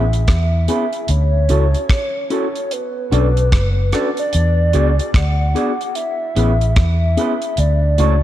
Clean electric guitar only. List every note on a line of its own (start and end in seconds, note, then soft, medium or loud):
0.68 0.82 C#4 medium
0.68 0.83 G#4 medium
0.68 0.83 B4 medium
1.49 1.63 C#4 medium
1.49 1.64 F#4 medium
1.49 1.64 A4 medium
2.30 2.45 C#4 medium
2.30 2.45 F#4 medium
2.30 2.45 A4 medium
3.11 3.26 F#4 medium
3.11 3.26 A4 medium
3.11 3.27 D5 medium
3.93 4.07 F#4 medium
3.93 4.07 A4 medium
3.93 4.08 D5 medium
4.73 4.88 F#4 medium
4.73 4.88 G#4 medium
4.73 4.89 D5 loud
5.55 5.69 F#4 medium
5.55 5.70 G#4 medium
5.55 5.70 D5 medium
6.36 6.50 C#4 medium
6.36 6.51 G#4 medium
6.36 6.51 B4 medium
7.17 7.31 C#4 medium
7.17 7.32 G#4 medium
7.17 7.32 B4 loud
7.98 8.13 F#4 medium
7.98 8.13 A4 medium
7.98 8.13 C#5 medium